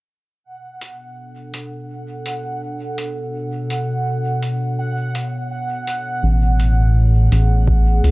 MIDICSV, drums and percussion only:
0, 0, Header, 1, 2, 480
1, 0, Start_track
1, 0, Tempo, 722892
1, 298, Time_signature, 4, 2, 24, 8
1, 5386, End_track
2, 0, Start_track
2, 0, Title_t, "Drums"
2, 541, Note_on_c, 9, 42, 46
2, 607, Note_off_c, 9, 42, 0
2, 1021, Note_on_c, 9, 42, 45
2, 1087, Note_off_c, 9, 42, 0
2, 1499, Note_on_c, 9, 42, 47
2, 1565, Note_off_c, 9, 42, 0
2, 1979, Note_on_c, 9, 42, 48
2, 2045, Note_off_c, 9, 42, 0
2, 2458, Note_on_c, 9, 42, 46
2, 2525, Note_off_c, 9, 42, 0
2, 2939, Note_on_c, 9, 42, 46
2, 3005, Note_off_c, 9, 42, 0
2, 3420, Note_on_c, 9, 42, 49
2, 3486, Note_off_c, 9, 42, 0
2, 3900, Note_on_c, 9, 42, 50
2, 3966, Note_off_c, 9, 42, 0
2, 4380, Note_on_c, 9, 42, 46
2, 4446, Note_off_c, 9, 42, 0
2, 4860, Note_on_c, 9, 42, 48
2, 4927, Note_off_c, 9, 42, 0
2, 5096, Note_on_c, 9, 36, 95
2, 5163, Note_off_c, 9, 36, 0
2, 5341, Note_on_c, 9, 42, 50
2, 5386, Note_off_c, 9, 42, 0
2, 5386, End_track
0, 0, End_of_file